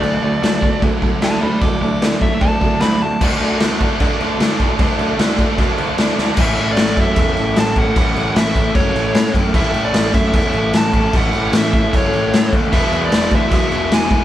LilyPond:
<<
  \new Staff \with { instrumentName = "Lead electric guitar" } { \time 4/4 \key a \major \tempo 4 = 151 d''2 r4 <fis'' a''>8 <d'' b''>8 | <fis'' d'''>8 d'''8 r8 e''8 a''4 b''8 a''8 | r1 | r1 |
e''8. d''8. e''8 e''4 a''8 fis''8~ | fis''4 e''4 cis''4. r8 | e''8. d''8. e''8 e''4 a''4 | fis''4 e''4 cis''4. r8 |
e''8. d''8. e''8 e''4 gis''4 | }
  \new Staff \with { instrumentName = "Overdriven electric guitar" } { \time 4/4 \key a \major <d a>8 <d a>8 <d a>8 <d a>8 <d a>8 <d a>8 <d a>8 <d a>8 | <d a>8 <d a>8 <d a>8 <d a>8 <d a>8 <d a>8 <d a>8 <d a>8 | <d a d'>8 <d a d'>8 <d a d'>8 <d a d'>8 <d a d'>8 <d a d'>8 <d a d'>8 <d a d'>8 | <d a d'>8 <d a d'>8 <d a d'>8 <d a d'>8 <d a d'>8 <d a d'>8 <d a d'>8 <d a d'>8 |
<a, e a>1 | <a, e a>1 | <a, e a>1 | <a, e a>1 |
<e, b, e>1 | }
  \new Staff \with { instrumentName = "Overdriven electric guitar" } { \time 4/4 \key a \major <d a d'>2 <d a d'>8 <d a d'>4 <d a d'>8~ | <d a d'>2 <d a d'>8 <d a d'>4 r8 | <d a d'>4. <d a d'>4. <d a d'>4 | <d a d'>4. <d a d'>4. <d a d'>4 |
r1 | r1 | r1 | r1 |
<e, b, e>2 <e, b, e>2 | }
  \new Staff \with { instrumentName = "Overdriven electric guitar" } { \clef bass \time 4/4 \key a \major <d fis>8 <d fis>8 <d fis>8 <d fis>8 <d fis>8 <d fis>8 <d fis>8 <d fis>8 | <d fis>8 <d fis>8 <d fis>8 <d fis>8 <d fis>8 <d fis>8 <d fis>8 <d fis>8 | <d fis a d'>8 <d fis a d'>8 <d fis a d'>8 <d fis a d'>8 <d fis a d'>8 <d fis a d'>8 <d fis a d'>8 <d fis a d'>8 | <d fis a d'>8 <d fis a d'>8 <d fis a d'>8 <d fis a d'>8 <d fis a d'>8 <d fis a d'>8 <d fis a d'>8 <d fis a d'>8 |
<a, e a cis' e'>2.~ <a, e a cis' e'>8 <a, e a cis' e'>8 | <a, e a cis' e'>2.~ <a, e a cis' e'>8 <a, e a cis' e'>8 | <a, e a cis' e'>2.~ <a, e a cis' e'>8 <a, e a cis' e'>8 | <a, e a cis' e'>2.~ <a, e a cis' e'>8 <a, e a cis' e'>8 |
<e gis b e'>2.~ <e gis b e'>8 <e gis b e'>8 | }
  \new Staff \with { instrumentName = "Picked electric bass" } { \clef bass \time 4/4 \key a \major d,8 d,8 d,8 b,,8 d,8 d,8 d,8 d,8 | d,8 d,8 d,8 b,,8 d,8 d,8 d,8 d,8 | d,8 d,8 d,4 d8 d,8 d,8 b,,8 | d,8 d,8 d,4 d,8 d,8 d,8 d,8 |
a,,8 a,8 a,,8 fis,8 e,8 a,,8 a,,4 | a,,8 a,,8 a,,4 fis,,8 a,,8 a,8 fis,8 | a,,8 a,8 a,,8 fis,8 e,8 a,,8 a,,4 | a,,8 a,,8 a,,4 fis,,8 a,,8 a,8 dis,8 |
e,,8 e,8 e,,8 d,8 b,,8 e,,8 e,,4 | }
  \new DrumStaff \with { instrumentName = "Drums" } \drummode { \time 4/4 cymc4 <cymc sn>8 bd8 <cymc bd>8 bd8 <cymc sn>4 | <cymc bd>4 <cymc sn>8 bd8 <cymc bd>8 bd8 <cymc sn>4 | <cymc bd>8 cymc8 <cymc sn>8 <cymc bd>8 <cymc bd>8 cymc8 <cymc sn>8 <cymc bd>8 | <cymc bd>8 cymc8 <cymc sn>8 <cymc bd>8 <cymc bd>8 cymc8 <cymc sn>8 sn8 |
<cymc bd>8 cymc8 <cymc sn>8 <cymc bd>8 <cymc bd>8 cymc8 <cymc sn>8 <cymc bd>8 | <cymc bd>8 cymc8 <cymc sn>8 <cymc bd>8 <cymc bd>8 cymc8 <cymc sn>8 <cymc bd>8 | <cymc bd>8 cymc8 <cymc sn>8 <cymc bd>8 <cymc bd>8 cymc8 <cymc sn>8 <cymc bd>8 | <cymc bd>8 cymc8 <cymc sn>8 <cymc bd>8 <cymc bd>8 cymc8 <cymc sn>8 <cymc bd>8 |
<cymc bd>8 cymc8 <cymc sn>8 <cymc bd>8 <cymc bd>8 cymc8 <cymc sn>8 <cymc bd>8 | }
>>